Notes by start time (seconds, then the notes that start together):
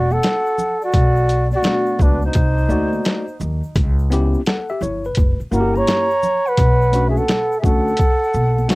Already playing: E1 F#4 D5
0.10 A4 F#5, high conga, shaker
0.23 snare, closed hi-hat, shaker
0.46 shaker
0.58 low conga, shaker
0.81 F#4 D5, shaker
0.92 B1, kick, closed hi-hat, shaker
1.16 shaker
1.28 closed hi-hat, shaker
1.51 D5, high conga, shaker
1.56 F#4
1.63 A3 B3 D4 F#4, snare, closed hi-hat, shaker
1.86 shaker
1.99 C#2, kick, low conga, shaker
2.00 D4 B4, shaker
2.22 C5, shaker
2.26 D#4
2.33 C2, kick, closed hi-hat, shaker
2.58 shaker
2.68 D2 A3 D#4 F#4 D5, high conga, shaker
2.93 high conga, shaker
3.04 snare, closed hi-hat, shaker
3.28 shaker
3.40 D#2, low conga, shaker
3.63 shaker
3.75 C#2, kick, closed hi-hat, shaker
3.99 shaker
4.10 B3 C#4 E4 G4, closed hi-hat, shaker
4.34 high conga, shaker
4.46 A4 F#5, snare, closed hi-hat, shaker
4.69 G4 E5, shaker
4.81 G1 C#5, low conga, shaker
4.82 E4, shaker
5.04 B4, shaker
5.15 F#1, kick, closed hi-hat, shaker
5.40 muted upright bass stroke, shaker
5.51 G1 A#3 C#4 E4 F#4 A#4 F#5, high conga, shaker
5.60 G4
5.75 C#5 A#5, high conga, shaker
5.87 snare, closed hi-hat, shaker
6.10 shaker
6.23 low conga, shaker
6.46 B4 F#5, shaker
6.57 B1, kick, closed hi-hat, shaker
6.82 shaker
6.92 A3 C#4 D4 F#4, closed hi-hat, shaker
7.07 G#4 E5
7.17 A4 F#5, high conga, shaker
7.28 snare, closed hi-hat, shaker
7.52 shaker
7.59 G#4 E5
7.63 D2 A3 C#4 D4 F#4 A4 F#5, kick, low conga, shaker
7.88 shaker
7.97 kick, closed hi-hat, shaker
8.24 shaker
8.33 B1, high conga, shaker
8.36 shaker
8.58 high conga, shaker
8.68 A3 C#4 D4 F#4, snare, closed hi-hat, shaker